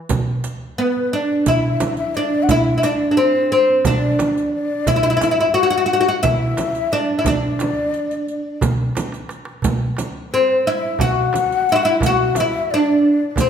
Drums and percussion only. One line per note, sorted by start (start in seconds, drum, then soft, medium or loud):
0.09 riq medium
0.09 darbuka dum loud
0.09 frame drum medium
0.44 riq soft
0.44 darbuka tek medium
0.78 darbuka ka soft
0.95 darbuka ka soft
1.12 darbuka ka soft
1.46 riq medium
1.46 darbuka dum medium
1.46 frame drum medium
1.80 riq medium
1.80 frame drum medium
1.97 riq soft
1.97 darbuka ka soft
2.14 riq soft
2.14 darbuka ka soft
2.49 riq medium
2.49 frame drum medium
2.49 darbuka dum loud
2.83 riq medium
2.83 darbuka tek medium
3.34 darbuka ka soft
3.51 darbuka ka soft
3.85 riq medium
3.85 darbuka dum medium
3.85 frame drum medium
4.19 riq medium
4.19 darbuka tek medium
4.19 frame drum medium
4.35 riq soft
4.35 darbuka ka soft
4.53 darbuka ka soft
4.87 riq medium
4.87 darbuka dum medium
4.87 frame drum medium
5.21 riq soft
5.21 darbuka tek medium
5.21 frame drum medium
5.56 darbuka ka soft
5.73 darbuka ka soft
5.90 darbuka ka soft
6.23 riq medium
6.23 darbuka dum medium
6.23 frame drum medium
6.57 riq soft
6.57 darbuka tek medium
6.57 frame drum medium
6.75 riq soft
6.75 darbuka ka soft
6.91 riq soft
6.91 darbuka ka soft
7.25 riq medium
7.25 darbuka dum medium
7.25 frame drum medium
7.59 riq soft
7.59 darbuka tek medium
7.59 frame drum medium
7.77 darbuka ka soft
7.94 riq soft
8.10 riq soft
8.10 darbuka ka soft
8.27 riq soft
8.27 darbuka ka soft
8.61 riq medium
8.61 darbuka dum medium
8.61 frame drum medium
8.95 riq soft
8.95 darbuka tek medium
8.95 frame drum medium
9.12 riq soft
9.12 darbuka ka medium
9.29 riq soft
9.29 darbuka tek medium
9.45 darbuka ka medium
9.62 riq medium
9.62 darbuka dum medium
9.62 frame drum medium
9.97 riq soft
9.97 darbuka tek medium
9.97 frame drum medium
10.31 darbuka ka soft
10.48 darbuka ka soft
10.65 darbuka ka soft
10.99 riq medium
10.99 darbuka dum medium
10.99 frame drum medium
11.33 riq soft
11.33 darbuka tek medium
11.33 frame drum medium
11.51 riq soft
11.51 darbuka ka soft
11.67 riq soft
11.67 darbuka ka soft
12.01 riq medium
12.01 darbuka dum medium
12.01 frame drum medium
12.35 riq soft
12.35 darbuka tek medium
12.35 frame drum medium
12.69 darbuka ka soft
12.86 darbuka ka soft
13.03 darbuka ka soft
13.36 riq medium
13.36 darbuka dum medium
13.36 frame drum medium